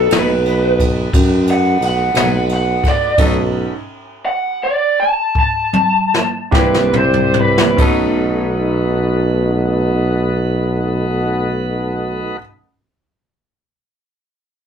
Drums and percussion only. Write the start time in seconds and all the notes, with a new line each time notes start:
0.11 snare, ride
0.46 ride
0.80 kick, ride
1.13 kick, ride
1.47 ride
1.82 ride
2.15 snare, ride
2.49 ride
2.84 kick, snare, ride
3.18 kick, crash, ride
5.35 kick
5.73 high tom
6.14 snare
6.52 kick, snare
6.74 snare
6.93 mid tom
7.13 floor tom
7.34 floor tom
7.58 snare
7.78 kick, crash